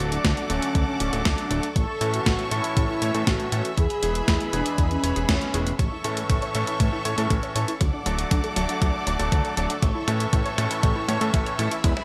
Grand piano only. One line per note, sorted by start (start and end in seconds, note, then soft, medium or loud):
0.00 0.47 F#3 medium
0.00 0.47 A3 medium
0.00 0.47 D4 medium
0.00 0.47 A4 loud
0.50 0.97 D3 medium
0.50 0.97 F#3 medium
0.50 0.97 A3 medium
0.50 0.97 A4 loud
1.00 1.10 F#3 medium
1.00 1.10 A3 medium
1.00 1.10 D4 medium
1.00 1.10 D5 medium
1.13 1.48 F#3 medium
1.13 1.48 A3 medium
1.13 1.48 D4 medium
1.13 1.48 A4 loud
1.50 1.65 F#3 medium
1.50 1.65 A3 medium
1.50 1.65 D4 medium
1.50 1.65 A4 loud
2.01 2.48 A2 medium
2.01 2.48 E3 medium
2.01 2.48 A3 medium
2.01 2.48 C#4 medium
2.01 2.48 A4 loud
2.51 2.99 A2 medium
2.51 2.99 E3 medium
2.51 2.99 A3 medium
2.51 2.99 C#4 medium
2.51 2.99 A4 loud
3.02 3.11 A2 medium
3.02 3.11 E3 medium
3.02 3.11 A3 medium
3.02 3.11 C#4 medium
3.02 3.11 C#5 medium
3.14 3.49 A2 medium
3.14 3.49 E3 medium
3.14 3.49 A3 medium
3.14 3.49 C#4 medium
3.14 3.49 A4 loud
3.52 3.66 E3 medium
3.52 3.66 A3 medium
3.52 3.66 C#4 medium
3.52 3.66 A4 loud
4.03 4.50 E3 medium
4.03 4.50 G#3 medium
4.03 4.50 B3 medium
4.03 4.50 G#4 loud
4.53 5.00 E3 medium
4.53 5.00 G#3 medium
4.53 5.00 B3 medium
4.53 5.00 G#4 loud
5.03 5.13 E3 medium
5.03 5.13 G#3 medium
5.03 5.13 B3 medium
5.03 5.13 C#5 medium
5.16 5.51 E3 medium
5.16 5.51 G#3 medium
5.16 5.51 B3 medium
5.16 5.51 G#4 loud
5.54 5.68 A2 medium
5.54 5.68 E3 medium
5.54 5.68 G#3 medium
5.54 5.68 B3 medium
5.54 5.68 G#4 loud
6.04 6.52 A2 medium
6.04 6.52 E3 medium
6.04 6.52 A3 medium
6.04 6.52 C#4 medium
6.04 6.52 A4 medium
6.55 7.02 A2 medium
6.55 7.02 E3 medium
6.55 7.02 A3 medium
6.55 7.02 C#4 medium
6.55 7.02 A4 loud
7.05 7.15 A2 medium
7.05 7.15 E3 medium
7.05 7.15 A3 medium
7.05 7.15 C#4 medium
7.05 7.15 C#5 medium
7.18 7.53 A2 medium
7.18 7.53 E3 medium
7.18 7.53 A3 medium
7.18 7.53 C#4 medium
7.18 7.53 A4 loud
7.56 7.70 E3 medium
7.56 7.70 A3 medium
7.56 7.70 C#4 medium
7.56 7.70 A4 loud
8.06 8.53 F#3 medium
8.06 8.53 A3 medium
8.06 8.53 D4 medium
8.06 8.53 A4 loud
8.56 9.04 F#3 medium
8.56 9.04 A3 medium
8.56 9.04 D4 medium
8.56 9.04 A4 loud
9.07 9.16 F#3 medium
9.07 9.16 A3 medium
9.07 9.16 D4 medium
9.07 9.16 D5 medium
9.19 9.54 F#3 medium
9.19 9.54 A3 medium
9.19 9.54 D4 medium
9.19 9.54 A4 loud
9.57 9.71 F#3 medium
9.57 9.71 A3 medium
9.57 9.71 D4 medium
9.57 9.71 A4 loud
10.08 10.55 A2 medium
10.08 10.55 E3 medium
10.08 10.55 A3 medium
10.08 10.55 C#4 medium
10.08 10.55 A4 loud
10.58 11.05 A2 medium
10.58 11.05 E3 medium
10.58 11.05 A3 medium
10.58 11.05 C#4 medium
10.58 11.05 A4 loud
11.08 11.18 A2 medium
11.08 11.18 E3 medium
11.08 11.18 A3 medium
11.08 11.18 C#4 medium
11.08 11.18 C#5 medium
11.21 11.56 A2 medium
11.21 11.56 E3 medium
11.21 11.56 A3 medium
11.21 11.56 C#4 medium
11.21 11.56 A4 loud
11.59 11.73 E3 medium
11.59 11.73 A3 medium
11.59 11.73 C#4 medium
11.59 11.73 A4 loud